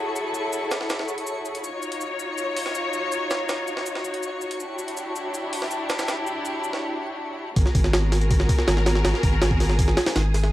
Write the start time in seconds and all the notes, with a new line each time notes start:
Already playing: E4 F#4 G#4 A4 C#5 C#6
0.16 shaker
0.34 shaker
0.53 shaker
0.71 snare, shaker
0.81 snare
0.90 snare, shaker
0.99 snare
1.09 shaker
1.18 closed hi-hat
1.27 shaker
1.45 shaker
1.55 closed hi-hat
1.64 D#4 F4 F#4 C#5, shaker
1.83 shaker
1.92 closed hi-hat
2.01 shaker
2.20 shaker
2.38 shaker
2.57 open hi-hat
2.66 snare
2.75 shaker
2.94 shaker
3.12 shaker
3.31 snare, shaker
3.49 snare, shaker
3.68 shaker
3.77 snare
3.86 shaker
3.95 snare
4.05 shaker
4.14 closed hi-hat
4.23 shaker
4.42 shaker
4.51 closed hi-hat
4.60 D4 E4 G4, shaker
4.79 shaker
4.88 closed hi-hat
4.97 shaker
5.16 shaker
5.34 shaker
5.53 open hi-hat
5.62 snare
5.71 shaker
5.90 snare, shaker
5.99 snare, shaker
6.08 snare, shaker
6.27 shaker
6.45 shaker
6.64 shaker
6.73 snare
7.56 G#1 B3 F#4 G#4 A#4, kick, open hi-hat
7.66 snare
7.75 G#1, kick, open hi-hat
7.84 snare
7.93 snare, open hi-hat
8.12 snare, open hi-hat
8.21 closed hi-hat
8.31 kick, open hi-hat
8.40 snare
8.49 kick, open hi-hat
8.59 snare
8.68 G#1, snare, open hi-hat
8.77 snare
8.86 snare, open hi-hat
8.95 snare
9.05 G#1, snare, open hi-hat
9.14 snare
9.23 G#1, kick, open hi-hat
9.42 snare, open hi-hat
9.51 kick
9.60 snare, open hi-hat
9.69 snare
9.79 kick, open hi-hat
9.88 snare
9.97 snare, open hi-hat
10.06 snare, open hi-hat
10.16 G#1, snare, open hi-hat
10.34 snare, open hi-hat
10.44 snare